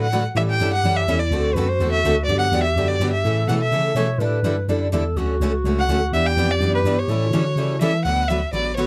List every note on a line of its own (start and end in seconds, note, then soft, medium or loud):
0.00 0.26 A2 medium
0.00 0.23 F#5 medium
0.13 0.22 D3 medium
0.13 0.22 F#3 medium
0.13 0.22 A3 medium
0.13 0.23 D4 medium
0.13 0.23 F#4 medium
0.13 0.23 B4 medium
0.35 0.59 A2 medium
0.35 0.54 E3 medium
0.35 0.54 G3 medium
0.35 0.54 C#4 medium
0.35 0.54 E4 medium
0.35 1.04 G4 medium
0.35 0.54 A4 medium
0.35 0.42 E5 medium
0.50 0.72 G5 loud
0.60 0.83 G2 medium
0.60 0.70 E3 medium
0.60 0.70 G3 medium
0.60 0.70 C#4 medium
0.60 0.70 E4 medium
0.60 0.71 A4 medium
0.73 0.98 F#5 loud
0.84 1.07 F#2 medium
0.84 1.01 E3 medium
0.84 1.02 G3 medium
0.84 1.02 C#4 medium
0.84 1.02 E4 medium
0.84 1.02 A4 medium
0.97 1.21 E5 medium
1.07 1.31 E2 medium
1.07 1.18 E3 medium
1.07 1.18 G3 medium
1.07 1.18 C#4 medium
1.07 1.34 E4 medium
1.07 1.18 E4 medium
1.07 1.18 A4 medium
1.19 1.56 D5 medium
1.31 1.55 D2 medium
1.31 1.50 D3 medium
1.31 1.50 A3 medium
1.31 1.50 C4 medium
1.31 2.31 F#4 medium
1.31 1.50 F#4 medium
1.31 1.50 A4 medium
1.54 1.79 F#2 medium
1.54 1.67 D3 medium
1.54 1.67 C4 medium
1.54 1.67 A4 medium
1.54 1.70 B4 medium
1.58 1.67 A3 medium
1.58 1.67 F#4 medium
1.68 1.91 C5 medium
1.80 2.03 E2 medium
1.80 1.98 D3 medium
1.80 1.98 A3 medium
1.80 1.98 C4 medium
1.80 1.98 F#4 medium
1.80 1.98 A4 medium
1.92 2.15 E5 medium
2.04 2.27 D2 medium
2.04 2.14 D3 medium
2.04 2.15 A3 medium
2.04 2.15 C4 medium
2.04 2.15 F#4 medium
2.04 2.15 A4 medium
2.25 2.52 G2 medium
2.25 2.46 D3 medium
2.25 2.46 F#3 medium
2.25 2.38 D5 medium
2.29 2.46 B3 medium
2.29 2.47 D4 medium
2.29 2.76 G4 medium
2.29 2.47 G4 medium
2.39 2.62 F#5 loud
2.52 2.76 E2 medium
2.52 2.63 D3 medium
2.52 2.62 F#3 medium
2.52 2.62 B3 medium
2.52 2.63 D4 medium
2.52 2.63 G4 medium
2.63 2.89 E5 medium
2.76 2.99 F#2 medium
2.76 2.95 D3 medium
2.76 2.95 F#3 medium
2.76 2.95 B3 medium
2.76 2.95 D4 medium
2.76 3.25 G4 medium
2.76 2.95 G4 medium
2.88 3.12 D5 medium
3.00 3.24 G2 medium
3.00 3.11 D3 medium
3.00 3.11 F#3 medium
3.00 3.11 B3 medium
3.00 3.11 D4 medium
3.00 3.11 G4 medium
3.12 3.46 E5 medium
3.24 3.48 A2 medium
3.24 3.42 C#3 medium
3.24 3.43 E3 medium
3.24 3.43 A3 medium
3.24 3.44 C#4 medium
3.24 3.44 E4 medium
3.24 3.95 A4 medium
3.24 3.44 A4 medium
3.48 3.72 B2 medium
3.48 3.59 C#3 medium
3.48 3.59 E3 medium
3.48 3.59 A3 medium
3.48 3.60 C#4 medium
3.48 3.59 E4 medium
3.48 3.60 A4 medium
3.48 3.54 F#5 medium
3.61 4.06 E5 medium
3.72 3.83 C#3 medium
3.72 3.90 C#3 medium
3.72 3.91 E3 medium
3.72 3.91 A3 medium
3.72 3.91 C#4 medium
3.72 3.91 E4 medium
3.72 3.91 A4 medium
3.84 3.90 C#3 soft
3.94 4.19 B2 medium
3.94 4.06 C#3 medium
3.94 4.07 E3 medium
3.94 4.07 A3 medium
3.94 4.07 C#4 medium
3.94 4.07 E4 medium
3.94 4.07 A4 medium
3.94 4.20 C#5 medium
4.18 4.43 A2 medium
4.18 4.38 D3 medium
4.18 4.38 G3 medium
4.18 4.39 D4 medium
4.18 4.39 E4 medium
4.18 4.39 A4 medium
4.18 4.65 B4 medium
4.43 4.67 G2 medium
4.43 4.55 D3 medium
4.43 4.55 G3 medium
4.43 4.55 D4 medium
4.43 4.55 E4 medium
4.43 4.55 A4 medium
4.68 4.92 F#2 medium
4.68 4.87 D3 medium
4.68 4.87 G3 medium
4.68 4.87 D4 medium
4.68 4.87 E4 medium
4.68 4.87 A4 medium
4.92 5.16 E2 medium
4.92 5.03 D3 medium
4.92 5.03 G3 medium
4.92 5.03 D4 medium
4.92 5.03 E4 medium
4.92 5.19 A4 medium
4.92 5.03 A4 medium
5.16 5.40 D2 medium
5.16 5.35 D3 medium
5.16 5.35 F#3 medium
5.16 5.35 A3 medium
5.16 5.36 C#4 medium
5.16 6.14 F#4 loud
5.16 5.36 F#4 medium
5.16 5.36 A4 medium
5.40 5.63 C#2 medium
5.40 5.52 D3 medium
5.40 5.51 F#3 medium
5.40 5.52 A3 medium
5.40 5.52 C#4 medium
5.40 5.52 F#4 medium
5.40 5.52 A4 medium
5.64 5.88 C#2 medium
5.64 5.84 D3 medium
5.64 5.83 F#3 medium
5.64 5.84 A3 medium
5.64 5.84 C#4 medium
5.64 5.84 F#4 medium
5.64 5.84 A4 medium
5.79 6.01 F#5 medium
5.88 6.12 D2 medium
5.88 6.00 D3 medium
5.88 5.99 F#3 loud
5.88 6.00 A3 medium
5.88 6.00 C#4 medium
5.88 6.00 F#4 medium
5.88 6.00 A4 medium
6.12 6.36 E2 medium
6.12 6.31 E3 medium
6.12 6.32 G3 medium
6.12 6.31 B3 medium
6.12 6.32 D4 medium
6.12 7.11 G4 medium
6.12 6.32 G4 medium
6.12 6.28 E5 loud
6.16 6.32 E4 medium
6.16 6.32 B4 medium
6.26 6.52 G5 loud
6.37 6.60 F2 medium
6.37 6.47 E3 medium
6.37 6.48 G3 medium
6.37 6.47 B3 medium
6.37 6.48 D4 medium
6.37 6.48 E4 medium
6.37 6.48 G4 medium
6.37 6.48 B4 medium
6.51 6.75 D5 medium
6.60 6.84 F#2 medium
6.60 6.80 E3 medium
6.60 6.80 G3 medium
6.60 6.79 B3 medium
6.60 6.80 D4 medium
6.60 6.80 E4 medium
6.60 6.79 G4 medium
6.60 6.80 B4 medium
6.75 7.01 B4 medium
6.84 6.96 G2 medium
6.84 6.95 E3 medium
6.84 6.96 G3 medium
6.84 6.95 B3 medium
6.84 6.96 D4 medium
6.84 6.96 E4 medium
6.84 6.96 G4 loud
6.84 6.96 B4 medium
6.97 7.03 G2 soft
6.97 7.81 C#5 medium
7.08 7.32 A2 medium
7.08 7.28 E3 medium
7.08 7.28 G3 medium
7.08 7.28 C#4 medium
7.08 7.28 E4 medium
7.08 7.28 A4 medium
7.26 7.32 F4 medium
7.31 7.55 D3 medium
7.31 7.43 E3 medium
7.31 7.43 G3 medium
7.31 7.43 C#4 medium
7.31 7.43 E4 medium
7.31 7.80 F#4 medium
7.31 7.44 A4 loud
7.56 7.80 C#3 medium
7.56 7.75 E3 medium
7.56 7.75 G3 medium
7.56 7.75 C#4 medium
7.56 7.75 E4 medium
7.56 7.75 A4 medium
7.81 7.91 E3 medium
7.81 8.05 E3 medium
7.81 7.91 G3 medium
7.81 7.91 C#4 medium
7.81 8.04 E4 medium
7.81 7.91 E4 medium
7.81 7.91 A4 medium
7.81 8.04 E5 medium
8.05 8.43 D2 medium
8.05 8.23 D3 medium
8.05 8.23 F#3 medium
8.05 8.23 B3 medium
8.05 8.23 F#4 medium
8.05 8.23 B4 medium
8.05 8.29 F#5 medium
8.28 8.40 D3 medium
8.28 8.40 F#3 medium
8.28 8.40 B3 medium
8.28 8.40 F#4 medium
8.28 8.40 B4 medium
8.28 8.53 E5 medium
8.53 8.87 A1 medium
8.53 8.71 D3 medium
8.53 8.71 F#3 medium
8.53 8.71 B3 medium
8.53 8.71 F#4 medium
8.53 8.71 B4 medium
8.53 8.76 D5 medium
8.77 8.87 D3 medium
8.77 8.87 F#3 medium
8.77 8.87 B3 medium
8.77 8.87 F#4 medium
8.77 8.87 B4 medium
8.77 8.87 C#5 medium